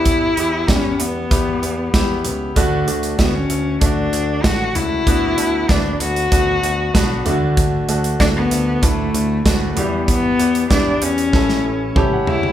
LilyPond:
<<
  \new Staff \with { instrumentName = "Grand piano" } { \time 4/4 \key d \major \tempo 4 = 96 << { r1 | r1 | r1 | r1 |
r2. a''16 fis''16 e''8 | } \\ { <b e' g'>8 <b e' g'>8 <b e' g'>4 <b e' g'>4 <b e' g'>4 | <a d' fis'>8 <a d' fis'>8 <a fis'>4 <a d' fis'>4 <a d' fis'>4 | <b d' fis'>8 <b d' fis'>8 <b d' fis'>4 <b d' fis'>4 <b d' fis'>8 <a d' fis'>8~ | <a d' fis'>8 <a d' fis'>8 <a d' fis'>4 <a d' e'>4 <a d' fis'>8 <b e' g'>8~ |
<b e' g'>8 <b e' g'>8 <b e' g'>4 <cis' e' a'>4 <cis' e' g'>4 | } >> }
  \new Staff \with { instrumentName = "Grand piano" } { \clef bass \time 4/4 \key d \major e4 r2. | d4. r2 r8 | d4. r2 d8~ | d4 r2 r8 e8~ |
e4 r4 a,4. r8 | }
  \new Staff \with { instrumentName = "Cello" } { \time 4/4 \key d \major e'4 cis'8 b2 r8 | r4 b16 cis'8. d'4 fis'8 e'8~ | e'4 d'8 fis'2 r8 | r4 d'16 b8. a4 a8 g8 |
b4 d'8 cis'4. r8 e'8 | }
  \new Staff \with { instrumentName = "Picked electric bass" } { \clef bass \time 4/4 \key d \major e,8 e,8 e,8 e,8 e,8 e,8 e,8 cis,8 | d,8 d,8 d,8 d,8 d,8 d,8 a,,8 cis,8 | d,8 d,8 d,8 d,8 d,8 d,8 b,,8 d,8~ | d,8 d,8 d,8 d,8 d,8 d,8 d,8 e,8~ |
e,8 e,8 e,8 e,8 a,,8 a,,8 a,,8 cis,8 | }
  \new DrumStaff \with { instrumentName = "Drums" } \drummode { \time 4/4 <hh bd>8 hh8 <hh bd sn>8 hh8 <hh bd>8 hh8 <hh bd sn>8 hh8 | <hh bd>8 hh16 hh16 <hh bd sn>8 hh8 <hh bd>8 hh8 <hh bd sn>8 <hh tomfh>8 | <hh bd>8 hh8 <hh bd sn>8 hh16 hh16 <hh bd>8 hh8 <hh bd sn>8 <hh tomfh>8 | <hh bd>8 hh16 hh16 <hh bd sn>8 hh8 <hh bd>8 hh8 <hh bd sn>8 <hh tomfh>8 |
<hh bd>8 hh16 hh16 <hh bd sn>8 hh16 hh16 <bd sn>16 sn8. <bd toml>8 tomfh16 tomfh16 | }
>>